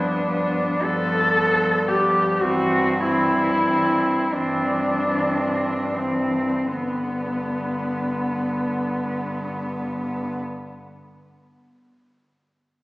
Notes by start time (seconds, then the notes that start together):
Already playing: G2 F3 B3 D4
0.24 F3 B3
0.81 G2 F3 B3 A4
1.36 F3 B3
1.88 F3 B3 G4
2.42 G2 E3 C4 F#4
3.01 E3 C4 E4
3.64 E3 C4
4.33 G2 E3 C4 D4
5.09 E3 C4
5.94 E3 C4
6.77 G2 D3 B3